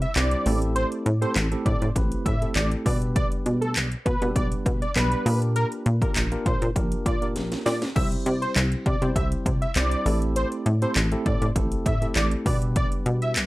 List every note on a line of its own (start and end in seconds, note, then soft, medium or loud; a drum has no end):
0.02 0.11 E5 medium
0.02 closed hi-hat medium
0.15 0.35 C2 loud
0.15 0.46 G3 medium
0.15 0.45 C4 medium
0.15 0.45 E4 medium
0.15 0.45 G4 medium
0.15 0.46 C5 medium
0.15 0.59 D5 medium
0.15 clap loud
0.15 closed hi-hat medium
0.31 closed hi-hat medium
0.46 0.85 A1 loud
0.46 1.09 A3 medium
0.46 1.09 C4 medium
0.46 1.09 E4 medium
0.46 1.09 G4 medium
0.46 1.09 A4 medium
0.46 open hi-hat medium
0.62 closed hi-hat medium
0.75 0.86 C5 loud
0.75 closed hi-hat medium
0.92 closed hi-hat medium
1.06 1.25 A2 loud
1.06 closed hi-hat medium
1.21 1.46 A3 medium
1.21 1.47 C4 medium
1.21 1.47 E4 medium
1.21 1.47 G4 medium
1.21 1.47 A4 loud
1.21 1.31 C5 medium
1.21 closed hi-hat medium
1.36 1.55 A1 loud
1.36 clap loud
1.36 closed hi-hat loud
1.51 1.89 A3 medium
1.51 1.89 C4 medium
1.51 1.89 E4 medium
1.51 1.89 G4 medium
1.51 1.89 A4 medium
1.51 closed hi-hat soft
1.66 1.76 A2 loud
1.66 1.86 D5 medium
1.66 kick loud
1.66 closed hi-hat medium
1.82 1.91 A2 medium
1.82 closed hi-hat medium
1.95 2.15 A1 loud
1.95 2.34 A3 medium
1.95 2.34 C4 medium
1.95 2.34 E4 medium
1.95 2.34 G4 medium
1.95 2.34 B4 medium
1.95 kick medium
1.95 closed hi-hat loud
2.12 closed hi-hat medium
2.25 2.45 A2 loud
2.25 2.46 E5 medium
2.25 kick medium
2.25 closed hi-hat medium
2.41 2.86 A3 medium
2.41 2.86 C4 medium
2.41 2.86 E4 medium
2.41 2.85 G4 medium
2.41 2.86 A4 medium
2.41 closed hi-hat soft
2.56 2.75 A1 loud
2.56 2.66 D5 medium
2.56 clap loud
2.56 closed hi-hat medium
2.72 closed hi-hat medium
2.85 3.25 B2 loud
2.85 3.87 G3 medium
2.85 3.87 B3 medium
2.85 3.87 D4 medium
2.85 3.87 G4 medium
2.85 3.87 B4 medium
2.85 2.96 D5 medium
2.85 kick medium
2.85 open hi-hat medium
3.02 closed hi-hat medium
3.16 3.26 D5 loud
3.16 kick loud
3.16 closed hi-hat medium
3.32 closed hi-hat medium
3.46 3.77 B2 loud
3.46 closed hi-hat medium
3.61 3.71 A4 medium
3.61 closed hi-hat medium
3.76 3.95 B1 loud
3.76 clap loud
3.76 closed hi-hat loud
3.92 closed hi-hat soft
4.05 4.16 B2 loud
4.05 4.26 B4 medium
4.05 kick loud
4.05 closed hi-hat medium
4.22 4.31 B2 loud
4.22 4.84 G3 medium
4.22 4.84 B3 medium
4.22 4.84 D4 medium
4.22 4.84 G4 medium
4.22 4.84 B4 loud
4.22 closed hi-hat medium
4.36 4.55 B1 loud
4.36 4.46 D5 loud
4.36 kick medium
4.36 closed hi-hat loud
4.52 closed hi-hat medium
4.66 4.85 B2 loud
4.66 kick loud
4.66 closed hi-hat medium
4.82 4.91 D5 medium
4.82 closed hi-hat soft
4.96 5.15 B1 loud
4.96 5.26 G3 medium
4.96 5.26 B3 medium
4.96 5.24 D4 medium
4.96 5.25 G4 medium
4.96 5.39 B4 medium
4.96 5.26 D5 medium
4.96 clap loud
4.96 closed hi-hat medium
5.12 closed hi-hat medium
5.26 5.65 A#2 loud
5.26 5.89 A#3 medium
5.26 5.89 D4 medium
5.26 5.89 F4 medium
5.26 5.89 G4 medium
5.26 5.89 A#4 medium
5.26 open hi-hat medium
5.42 closed hi-hat medium
5.56 5.67 A#4 loud
5.56 closed hi-hat medium
5.72 closed hi-hat medium
5.86 6.05 A#2 loud
5.86 closed hi-hat medium
6.01 6.26 A#3 medium
6.01 6.27 D4 medium
6.01 6.27 F4 medium
6.01 6.27 G4 medium
6.01 6.11 A#4 medium
6.01 6.27 A#4 loud
6.01 kick loud
6.01 closed hi-hat medium
6.16 6.35 A#1 loud
6.16 clap loud
6.16 closed hi-hat loud
6.31 6.69 A#3 medium
6.31 6.69 D4 medium
6.31 6.69 F4 medium
6.31 6.69 G4 medium
6.31 6.69 A#4 medium
6.31 closed hi-hat soft
6.46 6.56 A#2 loud
6.46 6.66 C5 medium
6.46 kick loud
6.46 closed hi-hat medium
6.62 6.71 A#2 loud
6.62 closed hi-hat medium
6.76 6.95 A#1 loud
6.76 7.14 A#3 medium
6.76 7.14 D4 medium
6.76 7.14 F4 medium
6.76 7.14 G4 medium
6.76 7.14 A#4 loud
6.76 kick medium
6.76 closed hi-hat loud
6.92 closed hi-hat medium
7.06 7.37 A#2 loud
7.06 7.26 D5 medium
7.06 kick medium
7.06 closed hi-hat medium
7.22 7.84 A#3 medium
7.22 7.84 D4 medium
7.22 7.84 F4 medium
7.22 7.84 G4 medium
7.22 7.84 A#4 medium
7.22 closed hi-hat soft
7.36 7.55 A#1 loud
7.36 snare medium
7.36 closed hi-hat medium
7.52 snare medium
7.52 closed hi-hat medium
7.66 7.85 A#2 loud
7.66 7.77 D5 medium
7.66 snare medium
7.66 open hi-hat medium
7.82 snare loud
7.82 closed hi-hat medium
7.96 8.15 C2 loud
7.96 8.84 G3 medium
7.96 8.84 C4 medium
7.96 8.84 E4 medium
7.96 8.84 G4 medium
7.96 8.84 C5 medium
7.96 8.06 E5 loud
7.96 kick loud
7.96 crash medium
8.12 closed hi-hat medium
8.26 8.46 C3 loud
8.26 closed hi-hat medium
8.42 8.51 C5 medium
8.42 closed hi-hat medium
8.56 8.75 C2 loud
8.56 clap loud
8.56 closed hi-hat loud
8.72 closed hi-hat soft
8.86 8.96 C3 loud
8.86 9.06 D5 medium
8.86 kick loud
8.86 closed hi-hat medium
9.02 9.11 C3 loud
9.02 9.64 G3 medium
9.02 9.64 C4 medium
9.02 9.64 E4 medium
9.02 9.64 G4 medium
9.02 9.64 C5 loud
9.02 closed hi-hat medium
9.16 9.35 C2 loud
9.16 9.27 E5 medium
9.16 kick medium
9.16 closed hi-hat loud
9.32 closed hi-hat medium
9.46 9.65 C3 loud
9.46 kick loud
9.46 closed hi-hat medium
9.62 9.71 E5 medium
9.62 closed hi-hat soft
9.76 9.95 C2 loud
9.76 10.06 G3 medium
9.76 10.05 C4 medium
9.76 10.05 E4 medium
9.76 10.05 G4 medium
9.76 10.06 C5 medium
9.76 10.19 D5 medium
9.76 clap loud
9.76 closed hi-hat medium
9.91 closed hi-hat medium
10.06 10.45 A1 loud
10.06 10.69 A3 medium
10.06 10.69 C4 medium
10.06 10.69 E4 medium
10.06 10.69 G4 medium
10.06 10.69 A4 medium
10.06 open hi-hat medium
10.22 closed hi-hat medium
10.36 10.47 C5 loud
10.36 closed hi-hat loud
10.52 closed hi-hat medium
10.66 10.85 A2 loud
10.66 closed hi-hat medium
10.82 11.07 A3 medium
10.82 11.07 C4 medium
10.82 11.07 E4 medium
10.82 11.07 G4 medium
10.82 11.07 A4 medium
10.82 10.91 C5 medium
10.82 closed hi-hat medium
10.96 11.15 A1 loud
10.96 clap loud
10.96 closed hi-hat loud
11.12 11.49 A3 medium
11.12 11.49 C4 medium
11.12 11.49 E4 medium
11.12 11.49 G4 medium
11.12 11.49 A4 medium
11.12 closed hi-hat soft
11.26 11.36 A2 loud
11.26 11.46 D5 medium
11.26 kick loud
11.26 closed hi-hat medium
11.42 11.51 A2 loud
11.42 closed hi-hat medium
11.56 11.75 A1 loud
11.56 11.94 A3 medium
11.56 11.94 C4 medium
11.56 11.94 E4 medium
11.56 11.94 G4 medium
11.56 11.94 A4 medium
11.56 kick medium
11.56 closed hi-hat loud
11.72 closed hi-hat medium
11.86 12.05 A2 loud
11.86 12.06 E5 medium
11.86 kick medium
11.86 closed hi-hat medium
12.02 12.46 A3 medium
12.02 12.46 C4 medium
12.02 12.46 E4 medium
12.02 12.45 G4 medium
12.02 12.46 A4 medium
12.02 closed hi-hat soft
12.16 12.35 A1 loud
12.16 12.27 D5 medium
12.16 clap loud
12.16 closed hi-hat medium
12.31 closed hi-hat medium
12.46 12.85 B2 loud
12.46 13.46 G3 medium
12.46 13.46 B3 medium
12.46 13.46 D4 medium
12.46 13.46 G4 medium
12.46 13.46 B4 medium
12.46 12.57 D5 medium
12.46 kick medium
12.46 open hi-hat medium
12.62 closed hi-hat medium
12.76 12.87 D5 loud
12.76 kick loud
12.76 closed hi-hat loud
12.92 closed hi-hat medium
13.06 13.37 B2 loud
13.06 closed hi-hat medium
13.22 13.31 E5 medium
13.22 closed hi-hat medium
13.36 13.46 B1 loud
13.36 clap loud
13.36 closed hi-hat loud